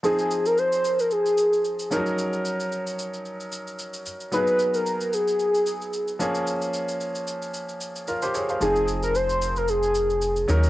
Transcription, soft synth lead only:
X:1
M:4/4
L:1/16
Q:"Swing 16ths" 1/4=112
K:Fphr
V:1 name="Soft synth lead"
A3 B c3 B A6 z2 | z16 | _c3 B3 A8 z2 | z16 |
A3 B c3 B A6 z2 |]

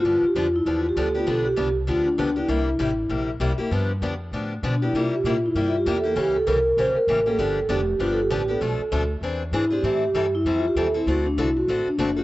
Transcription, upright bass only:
X:1
M:4/4
L:1/8
Q:"Swing" 1/4=196
K:Gmix
V:1 name="Upright bass" clef=bass
G,, z F,,2 E,,2 D,,2 | B,,,2 C,,2 D,,2 ^C,,2 | C,,2 A,,,2 _B,,,2 C,, z | G,,2 F,,2 A,,2 B,,2 |
C,2 _B,,2 G,,2 E,,2 | ^C,,2 =C,,2 ^A,,, z =A,,,2 | G,,,2 F,,,2 G,,,2 A,,,2 | B,,, z D,,2 E,,2 ^G,,2 |
A,,2 G,,2 F,,2 _E,,2 | D,,2 C,,2 A,,, z ^F,,,2 |]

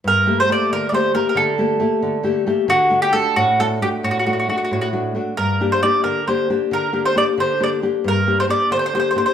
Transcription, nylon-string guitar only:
X:1
M:6/8
L:1/8
Q:3/8=90
K:Gm
V:1 name="Nylon-string guitar"
G,, [A,B,G] [A,B,G] D, [A,B,G] [A,B,G] | D, [A,B,G] [A,B,G] D, [A,B,G] [A,B,G] | D, [A,D^F] [A,DF] A,, [A,DF] [A,DF] | A,, [A,D^F] [A,DF] A,, [A,DF] [A,DF] |
G,, [B,DG] [B,DG] D, [B,DG] [B,DG] | D, [B,DG] [B,DG] D, [B,DG] [B,DG] | G,, [B,DG] [B,DG] D, [B,DG] [B,DG] |]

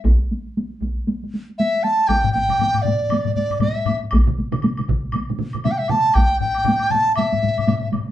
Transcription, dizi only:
X:1
M:4/4
L:1/16
Q:"Swing 16ths" 1/4=118
K:none
V:1 name="Dizi"
z12 e2 a2 | g2 g4 d4 d2 e3 z | z12 e/2 g/2 e a2 | g2 g4 a2 e6 z2 |]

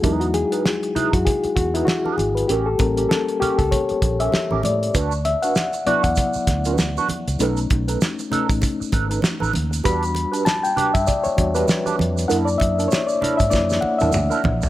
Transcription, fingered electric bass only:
X:1
M:4/4
L:1/16
Q:"Swing 16ths" 1/4=98
K:Emix
V:1 name="Fingered electric bass" clef=bass
E,,3 z4 F,, z2 E,,2 z2 G,,,2 | A,,,2 A,,,2 z3 C,, z2 _B,,,2 z A,,, A,,2 | D,,3 z4 E,, z2 D,,4 z C,, | B,,,2 B,,,2 z3 A,,, z2 G,,,2 z A,,, ^D,,2 |
E,,3 z4 =G,, z2 E,,2 z2 ^E,,2 | F,,2 F,,2 z3 G,, F,,2 z E,, D,, z ^A,,,2 |]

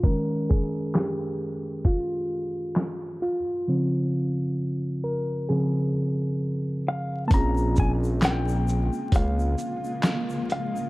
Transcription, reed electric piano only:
X:1
M:4/4
L:1/8
Q:"Swing 16ths" 1/4=66
K:Bbdor
V:1 name="Reed electric piano"
B A G2 F3 F- | F3 B A2 z2 | [B,CDFA]8 |]
V:2 name="Reed electric piano" clef=bass
[E,A,D] z6 z | [D,F,C] z3 [D,F,C] z3 | z8 |]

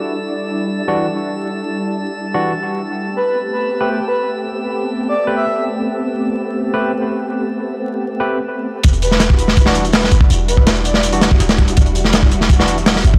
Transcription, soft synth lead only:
X:1
M:4/4
L:1/16
Q:1/4=164
K:Em
V:1 name="Soft synth lead"
z16 | z16 | z2 B2 z2 B4 G G B2 z2 | z6 z d2 z e3 z3 |
z16 | z16 | z2 B2 z2 B4 z2 B2 z2 | z2 B2 z2 d4 z6 |
z16 |]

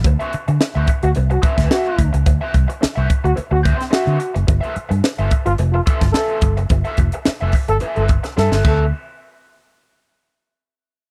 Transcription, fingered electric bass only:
X:1
M:4/4
L:1/16
Q:1/4=108
K:Dmix
V:1 name="Fingered electric bass" clef=bass
D,, z2 D, z D,, z D,, C,,2 z D,, z2 D,, ^C,, | D,, z C,, z2 C,, z D,, z D,,2 z2 D, z F,,, | G,,, z2 G,, z G,,, z G,,, =F,,,2 z G,,, z2 G,,, ^F,,, | G,,, z =F,,, z2 F,,, z G,,, z G,,,2 z G,, G,,, D,,2 |
z16 |]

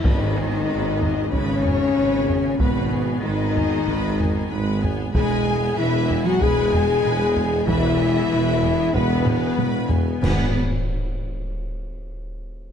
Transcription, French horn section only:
X:1
M:4/4
L:1/16
Q:1/4=94
K:G#m
V:1 name="French horn section"
D8 C8 | B,4 D8- D2 z2 | G4 E3 F G8 | E8 B,8 |
B,2 z12 z2 |]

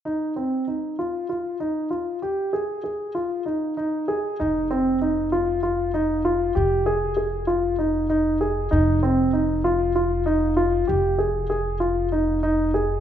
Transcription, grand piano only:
X:1
M:7/8
L:1/8
Q:1/4=97
K:Fm
V:1 name="Grand piano"
E C E F F E F | G A A F E E A | E C E F F E F | G A A F E E A |
E C E F F E F | G A A F E E A |]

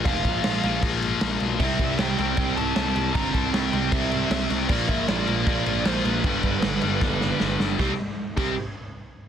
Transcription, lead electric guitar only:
X:1
M:4/4
L:1/8
Q:1/4=155
K:Cmix
V:1 name="Lead electric guitar"
f4 z4 | e2 g g2 a a2 | b a g2 e3 z | d e d2 d2 c =B- |
=B6- B z | G z2 G z4 |]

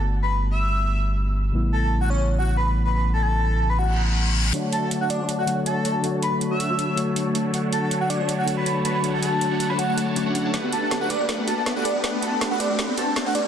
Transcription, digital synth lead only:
X:1
M:4/4
L:1/16
Q:1/4=160
K:D
V:1 name="Digital synth lead"
z2 b z2 e' e'4 z6 | z2 a a z f c z2 f z b z2 b b | z a a4- a b f f z6 | z2 a a z f d z2 f z2 a3 z |
z2 b z2 e' e'4 z6 | z2 a a z f d z2 f z b z2 b b | z a a4- a b f f z6 | z2 a a z f d z3 a a z f d z |
z2 a a z f d z3 a a z f d z |]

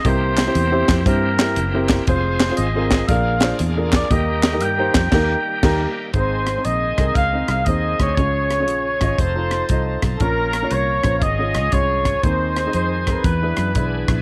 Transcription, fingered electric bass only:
X:1
M:4/4
L:1/8
Q:"Swing" 1/4=118
K:Ab
V:1 name="Fingered electric bass" clef=bass
C,,2 =E,, F,, G,,2 _G,,,2 | F,,,2 A,,,2 B,,,2 _F,,2 | E,,2 G,, F,, E,, z E,, z | A,,,2 B,,, C,, D,, C,, E,, =D,, |
D,,2 B,,, A,,, F,,,2 C,, _C,, | B,,,2 C,, B,,, A,,, D,, C,,2 | E,,2 F,,2 =E,, _G,, =B,,, _B,,, |]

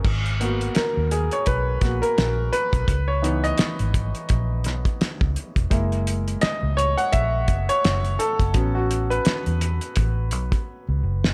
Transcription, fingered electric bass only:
X:1
M:4/4
L:1/16
Q:"Swing 16ths" 1/4=85
K:G#m
V:1 name="Fingered electric bass" clef=bass
G,,,4 z D,,2 z B,,,2 A,,, z A,,,2 z B,,, | C,,4 z G,,,2 z A,,,2 B,,, z2 C,, z E,,, | F,,,4 z C,,2 z A,,,2 F,,, z F,,,2 z F,,, | =A,,,4 z E,,2 z A,,,2 B,,, z2 C,, F,,,2 |]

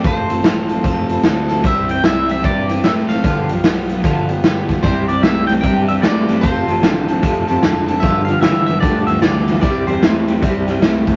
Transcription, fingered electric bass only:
X:1
M:4/4
L:1/8
Q:"Swing" 1/4=150
K:C
V:1 name="Fingered electric bass" clef=bass
F,,, A,,, A,,,2 F,,,2 D,,2 | C,,2 C,,2 G,,2 A,,2 | G,,, B,,, B,,,2 G,,,2 G,,,2 | C,,2 C,,2 G,,2 G,,2 |
F,,, A,,, A,,,2 F,,,2 F,,,2 | G,,,2 G,,,2 D,,2 D,,2 | C,, E,, E,,2 C,,2 C,,2 |]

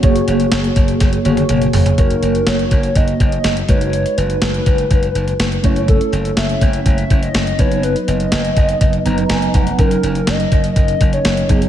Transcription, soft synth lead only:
X:1
M:4/4
L:1/16
Q:1/4=123
K:F#
V:1 name="Soft synth lead"
z16 | A4 c4 d4 d2 c2- | c2 B12 z2 | =A4 =e4 e3 d3 c2 |
B2 d12 z2 | A4 d4 d3 c3 d2 |]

